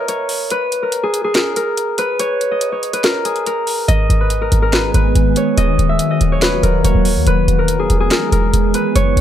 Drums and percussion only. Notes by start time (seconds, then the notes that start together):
0.08 closed hi-hat
0.29 open hi-hat
0.50 closed hi-hat
0.72 closed hi-hat
0.92 closed hi-hat
1.14 closed hi-hat
1.35 snare, clap, closed hi-hat
1.56 closed hi-hat
1.77 closed hi-hat
1.98 closed hi-hat
2.19 closed hi-hat
2.41 closed hi-hat
2.61 closed hi-hat
2.83 closed hi-hat
2.93 closed hi-hat
3.04 snare, clap, closed hi-hat
3.25 closed hi-hat
3.36 closed hi-hat
3.46 closed hi-hat
3.67 open hi-hat
3.88 closed hi-hat
4.10 closed hi-hat
4.30 closed hi-hat
4.52 closed hi-hat
4.73 snare, clap, closed hi-hat
4.94 closed hi-hat
5.16 closed hi-hat
5.36 closed hi-hat
5.58 closed hi-hat
5.79 closed hi-hat
5.99 closed hi-hat
6.21 closed hi-hat
6.42 snare, clap, closed hi-hat
6.63 closed hi-hat
6.85 closed hi-hat
7.05 open hi-hat
7.27 closed hi-hat
7.48 closed hi-hat
7.68 closed hi-hat
7.90 closed hi-hat
8.11 snare, clap, closed hi-hat
8.32 closed hi-hat
8.54 closed hi-hat
8.74 closed hi-hat
8.96 closed hi-hat
9.17 closed hi-hat